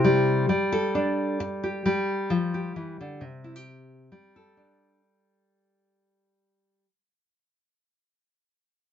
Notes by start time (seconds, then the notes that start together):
Already playing: C3 E4 G4 C5
0.04 G3
0.49 G3
0.72 A4
0.95 D4
1.40 muted nylon-string guitar stroke
1.64 G4
1.86 G3
2.30 F3
2.54 G4
2.76 E3
3.01 D3
3.21 C3
3.44 E4
3.56 G4
4.12 G3
4.36 A4
4.57 D4